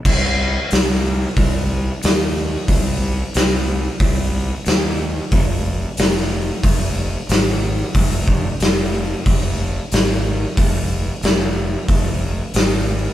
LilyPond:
<<
  \new Staff \with { instrumentName = "Fingered electric bass" } { \clef bass \time 4/4 \key c \minor \tempo 4 = 91 c,4 c,4 c,4 ees,4 | c,4 c,4 c,4 ees,4 | f,,4 f,,4 f,,4 aes,,4 | f,,4 f,,4 f,,4 aes,,4 |
f,,4 f,,4 f,,4 aes,,4 | }
  \new DrumStaff \with { instrumentName = "Drums" } \drummode { \time 4/4 <cymc bd>4 <hho sn>16 sn8. <hho bd>4 <hho sn>4 | <hho bd>4 <hho sn>4 <hho bd>4 <hho sn>4 | <hho bd>4 <hho sn>16 sn8. <hho bd>4 <hho sn>4 | <hho bd>8 bd8 <hho sn>4 <hho bd>4 <hho sn>4 |
<hho bd>4 <hho sn>4 <hho bd>4 <hho sn>4 | }
>>